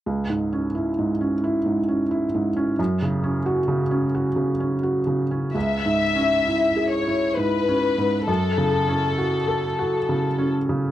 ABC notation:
X:1
M:3/4
L:1/16
Q:1/4=66
K:C#phr
V:1 name="Violin section"
z12 | z12 | e6 c2 B4 | A8- A2 z2 |]
V:2 name="Felt piano"
C,, G,, C E G,, C E G,, C E G,, C | F,, C, C F C, C F C, C F C, C | (3C,,2 G,,2 C2 (3E2 G2 E2 (3G,,2 C2 G,,2 | (3F,,2 C,2 C2 (3F2 A2 F2 (3C,2 C2 C,2 |]